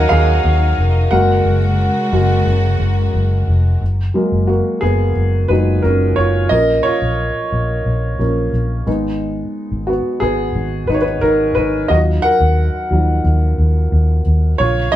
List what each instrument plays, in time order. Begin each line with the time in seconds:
Already playing: string section D#3 F#3 D#4 A#4, upright piano F#3 D#4 F4 F#4 G#4 A#4 C#5 D#5 F5 F#5
0.09 fingered electric bass D#2, upright piano G#4 F5
0.44 fingered electric bass D#2
0.78 fingered electric bass F1
1.11 fingered electric bass F#1, string section C#3 G#3 F#4, upright piano G#3 A#3 F#4 A#4 F#5
1.45 fingered electric bass F#1
2.12 fingered electric bass F#1, upright piano G#3 A#3 F#4
2.46 fingered electric bass F#1
2.79 fingered electric bass F#1
3.14 fingered electric bass F#1
3.47 fingered electric bass F1
3.81 fingered electric bass F#1
4.14 upright piano F#3 G#3 A#3
4.32 fingered electric bass F#1
4.47 upright piano A#3 F#4
4.81 fingered electric bass F#1, upright piano B3 G#4
5.16 fingered electric bass F#1
5.48 fingered electric bass F#1, upright piano A#2 F#3 G#3 D#4 B4
5.82 fingered electric bass F#1, upright piano C#4 A#4
6.16 fingered electric bass F#1, upright piano F4 C#5
6.49 fingered electric bass A#1, upright piano F3 A#3 C#4 A#4 D#5
6.83 upright piano F4 C#5
7.02 fingered electric bass A#1
7.52 fingered electric bass A#1
7.86 fingered electric bass A#1
8.19 fingered electric bass A#1, upright piano F3 A#3 C#4
8.53 fingered electric bass A#1
8.87 fingered electric bass G#1, upright piano G#3 B3 D#4
9.71 fingered electric bass G#1
9.87 upright piano B3 F#4
10.20 fingered electric bass G#1, upright piano B3 G#4
10.55 fingered electric bass G#1
10.87 fingered electric bass G#1, upright piano D#4 B4
10.95 upright piano C#5
11.01 upright piano D#4 B4
11.21 fingered electric bass G#1, upright piano D#4 A#4
11.55 fingered electric bass G#1, upright piano D#4 B4
11.88 fingered electric bass D#2, upright piano F#3 D#4 F4 F#4 D#5
12.22 upright piano A#4 F#5
12.40 fingered electric bass D#2
12.91 fingered electric bass D#2, upright piano F3 F#3 D#4
13.24 fingered electric bass D#2
13.58 fingered electric bass D#2
13.92 fingered electric bass D#2
14.26 fingered electric bass D#2
14.58 fingered electric bass A#1, string section C#3 A#3 F5, upright piano F4 C#5
14.92 upright piano D#5